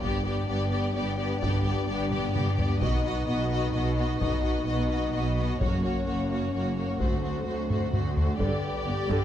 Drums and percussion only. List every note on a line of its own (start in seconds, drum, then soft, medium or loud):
0.03 taiko medium
1.42 taiko medium
2.12 taiko low-mid medium
2.35 taiko mid medium
2.59 taiko low medium
2.82 taiko medium
4.21 taiko medium
5.61 taiko medium
7.00 taiko medium
7.70 taiko low-mid medium
7.93 taiko low-mid medium
8.17 taiko low medium
8.40 taiko medium
9.10 taiko medium